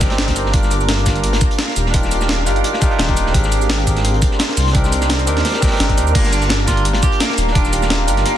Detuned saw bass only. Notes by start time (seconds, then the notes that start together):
Already playing: G1
0.54 G1
1.76 D#1
2.46 G1
2.99 D#1
3.34 G#1
4.57 C2
5.27 D#2
5.80 G1
5.97 D#2
6.15 G1
7.38 D#1
8.08 G1